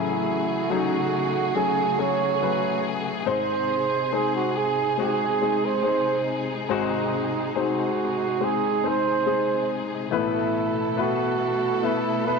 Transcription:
Already playing: grand piano A1 A2 F#3 A3 C#4 G#4, string section C#3 A3 F#4 G#4, flugelhorn E4
0.70 grand piano F#3 A3 C#4 D#4, flugelhorn F#4
1.55 grand piano F#3 A3 C#4 G#4, flugelhorn G#4
1.98 grand piano F#3 A3 C#4 G#4, flugelhorn C#5
2.41 grand piano F#3 A3 C#4 B4
3.26 grand piano G#1 G#2 G#3 C4 D#4 C5, string section C3 G#3 D#4, flugelhorn C5
4.12 grand piano G#3 C4 D#4 C5, flugelhorn G#4
4.35 flugelhorn F#4
4.57 flugelhorn G#4
4.97 grand piano G#3 C4 D#4 F#4, flugelhorn G#4
5.41 grand piano G#3 C4 D#4 G#4
5.65 flugelhorn C5
5.83 grand piano G#3 C4 D#4 C5
6.69 grand piano G#1 G#2 G#3 C4 D#4 F#4, flugelhorn D#4
7.55 grand piano G#3 C4 D#4 C5, flugelhorn F#4
8.40 grand piano G#3 C4 D#4 C5, flugelhorn G#4
8.83 grand piano G#3 C4 D#4 C5
8.88 flugelhorn C5
9.26 grand piano G#3 C4 D#4 G#4
10.11 grand piano A1 A2 A3 B3 E4 B4, string section B2 A3 E4 A4
10.15 flugelhorn E4
10.97 grand piano A3 B3 E4 B4, flugelhorn F#4
11.83 grand piano A3 B3 E4 B4, flugelhorn E4
12.27 grand piano A3 B3 E4 B4, flugelhorn B4

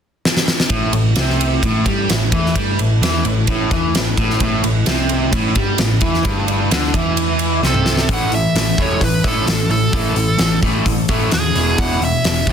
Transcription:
0.25 snare
0.37 snare
0.48 snare
0.60 snare
0.69 picked electric bass A1, overdriven electric guitar A2, analog synth pad A3 E4 B4, kick, ride
0.93 picked electric bass A1, overdriven electric guitar A2, ride
1.16 picked electric bass C2, overdriven electric guitar C3, snare, ride
1.30 snare
1.41 ride
1.63 picked electric bass A1, overdriven electric guitar A2, kick, ride
1.86 picked electric bass G2, overdriven electric guitar G3, kick, ride
2.09 picked electric bass A1, overdriven electric guitar A2, snare, ride
2.32 picked electric bass E2, overdriven electric guitar E3, kick, ride
2.46 snare
2.56 picked electric bass G2, overdriven electric guitar G3, kick, ride
2.79 picked electric bass A1, overdriven electric guitar A2, ride
3.01 picked electric bass E2, overdriven electric guitar E3, snare, ride
3.15 snare
3.24 picked electric bass A1, overdriven electric guitar A2, ride
3.47 picked electric bass A1, overdriven electric guitar A2, kick, ride
3.71 picked electric bass E2, overdriven electric guitar E3, kick, ride
3.94 picked electric bass A1, overdriven electric guitar A2, snare, ride
4.17 picked electric bass A1, overdriven electric guitar A2, kick, ride
4.30 snare
4.40 picked electric bass A1, overdriven electric guitar A2, kick, ride
4.64 picked electric bass A1, overdriven electric guitar A2, ride
4.86 picked electric bass C2, overdriven electric guitar C3, snare, ride
5.09 ride
5.32 picked electric bass A1, overdriven electric guitar A2, kick, ride
5.55 picked electric bass G2, overdriven electric guitar G3, kick, ride
5.78 picked electric bass A1, overdriven electric guitar A2, snare, ride
6.01 picked electric bass E2, overdriven electric guitar E3, kick, ride
6.14 snare
6.25 picked electric bass G1, overdriven electric guitar G2, kick, ride
6.48 ride
6.71 picked electric bass D2, overdriven electric guitar D3, snare, ride
6.84 snare
6.94 picked electric bass E2, overdriven electric guitar E3, kick, ride
7.17 ride
7.39 ride
7.62 picked electric bass C2, overdriven electric guitar C3, snare
7.67 lead electric guitar A4
7.74 mid tom
7.86 snare
7.97 snare
8.08 picked electric bass A1, overdriven electric guitar A2 E3 A3, kick, open hi-hat
8.13 lead electric guitar F#5
8.32 overdriven electric guitar A2 E3, lead electric guitar E5, open hi-hat
8.54 picked electric bass A1, overdriven electric guitar A2 E3, snare, open hi-hat
8.78 picked electric bass E1, overdriven electric guitar A2 E3 A3, lead electric guitar C#5, kick, open hi-hat
9.01 picked electric bass A1, overdriven electric guitar A2 E3, lead electric guitar B4, kick, open hi-hat
9.24 picked electric bass A1, overdriven electric guitar A2 E3 A3, lead electric guitar A4, kick, open hi-hat
9.46 picked electric bass A1, overdriven electric guitar A2 E3, snare, open hi-hat
9.69 picked electric bass A1, overdriven electric guitar A2 E3, lead electric guitar A4, open hi-hat
9.92 picked electric bass A1, overdriven electric guitar A2 E3 A3, kick, open hi-hat
10.14 picked electric bass A1, overdriven electric guitar A2 E3, open hi-hat
10.38 picked electric bass A1, overdriven electric guitar A2 E3, snare, open hi-hat
10.62 picked electric bass A1, overdriven electric guitar A2 E3 A3, kick, open hi-hat
10.85 picked electric bass A1, overdriven electric guitar A2 E3, kick, open hi-hat
11.08 picked electric bass A1, overdriven electric guitar A2 E3 A3, kick, open hi-hat
11.31 picked electric bass D#2, overdriven electric guitar A2 E3, lead electric guitar G#4, snare, open hi-hat
11.55 picked electric bass E1, overdriven electric guitar E2 B2 E3, open hi-hat
11.78 picked electric bass E1, overdriven electric guitar E2 B2 E3, lead electric guitar F#5, kick, open hi-hat
12.01 overdriven electric guitar E2 B2, lead electric guitar E5, open hi-hat
12.24 picked electric bass E1, overdriven electric guitar E2 B2, snare, open hi-hat
12.47 picked electric bass B1, overdriven electric guitar E2 B2 E3, kick, open hi-hat

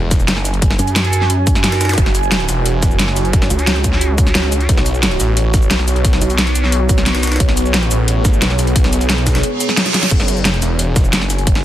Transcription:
Already playing: detuned saw bass E1, ambient pad F#4 C#5 G#5, impact
0.11 kick, snare, closed hi-hat, shaker
0.20 shaker
0.28 detuned saw bass F#1, snare, closed hi-hat
0.37 snare
0.45 snare, closed hi-hat, shaker
0.54 closed hi-hat
0.62 kick, closed hi-hat
0.71 snare
0.79 wobble bass F#2, closed hi-hat, shaker
0.88 closed hi-hat, shaker
0.96 snare, closed hi-hat
1.04 closed hi-hat
1.13 closed hi-hat, shaker
1.21 snare
1.30 closed hi-hat
1.47 kick, closed hi-hat, shaker
1.55 snare, shaker
1.64 snare, closed hi-hat
1.72 snare, closed hi-hat
1.81 snare, closed hi-hat, shaker
1.85 snare, closed hi-hat
1.89 snare, closed hi-hat, zap
1.93 snare, closed hi-hat
1.98 detuned saw bass F#1, kick, closed hi-hat
2.06 snare
2.15 closed hi-hat, shaker
2.23 shaker
2.32 snare, closed hi-hat
2.40 closed hi-hat
2.49 detuned saw bass E1, snare, closed hi-hat, shaker
2.66 closed hi-hat
2.83 kick, snare, closed hi-hat, shaker
2.91 shaker
2.99 detuned saw bass F#1, snare, closed hi-hat
3.08 snare
3.16 snare, closed hi-hat, shaker
3.25 closed hi-hat
3.33 kick, closed hi-hat
3.42 snare
3.50 wobble bass C#2, closed hi-hat, shaker
3.59 closed hi-hat, shaker
3.67 snare, closed hi-hat
3.76 closed hi-hat
3.84 kick, closed hi-hat, shaker
3.93 snare
4.01 closed hi-hat
4.18 kick, closed hi-hat, shaker
4.27 snare, shaker
4.35 snare, closed hi-hat
4.44 snare
4.52 closed hi-hat, shaker
4.61 closed hi-hat
4.69 detuned saw bass B1, ambient pad B3, kick, closed hi-hat
4.77 snare
4.86 closed hi-hat, shaker
4.94 shaker
5.03 snare, closed hi-hat
5.11 closed hi-hat
5.20 detuned saw bass A1, snare, closed hi-hat, shaker
5.37 closed hi-hat
5.54 kick, snare, closed hi-hat, shaker
5.62 shaker
5.71 detuned saw bass B1, snare, closed hi-hat
5.79 snare
5.88 snare, closed hi-hat, shaker
5.96 closed hi-hat
6.05 kick, closed hi-hat
6.13 snare
6.21 wobble bass B1, closed hi-hat, shaker
6.30 closed hi-hat, shaker
6.38 snare, closed hi-hat
6.47 closed hi-hat
6.55 closed hi-hat, shaker
6.64 snare
6.72 closed hi-hat
6.89 kick, closed hi-hat, shaker
6.98 snare, shaker
7.06 snare, closed hi-hat
7.15 snare, closed hi-hat
7.23 snare, closed hi-hat, shaker
7.27 snare, closed hi-hat
7.32 snare, closed hi-hat
7.36 snare, closed hi-hat
7.40 detuned saw bass B1, ambient pad G#4, kick, closed hi-hat
7.49 snare
7.57 closed hi-hat, shaker
7.66 shaker
7.74 snare, closed hi-hat
7.83 closed hi-hat
7.91 detuned saw bass A1, closed hi-hat, shaker
8.08 closed hi-hat
8.25 kick, snare, closed hi-hat, shaker
8.33 shaker
8.42 detuned saw bass B1, snare, closed hi-hat
8.50 snare
8.59 snare, closed hi-hat, shaker
8.67 closed hi-hat
8.76 kick, closed hi-hat
8.84 snare
8.93 detuned saw bass B1, closed hi-hat, shaker
9.01 closed hi-hat, shaker
9.10 snare, closed hi-hat
9.18 closed hi-hat
9.27 kick, snare, closed hi-hat, shaker
9.35 snare, closed hi-hat
9.43 closed hi-hat, reverse cymbal
9.60 closed hi-hat, shaker
9.69 snare, shaker
9.77 snare, closed hi-hat
9.86 snare, closed hi-hat
9.94 snare, closed hi-hat, shaker
10.03 snare, closed hi-hat
10.11 detuned saw bass F#1, ambient pad F#4 C#5 G#5, kick, closed hi-hat, crash
10.20 snare
10.28 closed hi-hat, shaker
10.37 shaker
10.45 snare, closed hi-hat
10.54 closed hi-hat
10.62 detuned saw bass E1, snare, closed hi-hat, shaker
10.79 closed hi-hat
10.96 kick, snare, closed hi-hat, shaker
11.05 shaker
11.13 detuned saw bass F#1, snare, closed hi-hat
11.21 snare
11.30 snare, closed hi-hat, shaker
11.38 closed hi-hat
11.47 kick, closed hi-hat
11.55 snare

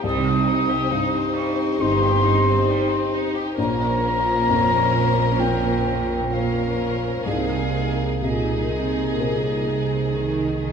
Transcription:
0.03 felt piano C2, double bass section C2, cello section C3, violin section G3 C5, french horn section C4 G4, viola section D#4, flute D#6
0.28 violin section C4
0.48 violin section D#4
0.70 violin section G4
0.91 felt piano G2, violin section D#4
1.15 violin section C4
1.35 violin section G3, flute C#6
1.56 violin section C4
1.78 double bass section G1, cello section G2, felt piano C4 D#4 G4, violin section D#4, flute C6
2.01 violin section G4
2.23 violin section D#4
2.46 violin section C4
2.68 violin section G3
2.90 violin section C4
3.13 violin section D#4
3.35 violin section G4
3.57 felt piano A#1, double bass section A#1, cello section A#2, viola section C#4, french horn section F4 C5, violin section A#4 C5, flute A#5
4.49 felt piano F2
5.39 felt piano C4 F4 A#4, flute G5
6.31 viola section C#4, french horn section F4 C5, violin section A#4 C5, flute F5
7.25 felt piano C2, double bass section C2, cello section C3, french horn section A#3 G#4, viola section D#4, violin section G#4 A#4, flute F5
8.22 cello section A#2, felt piano C3, french horn section A#3 G#4, viola section D#4, violin section G#4 A#4, flute D#5
8.70 cello section C3
9.19 cello section A#2, felt piano C4 G#4 A#4
9.68 cello section C3
10.16 cello section D#3
10.63 cello section D#3

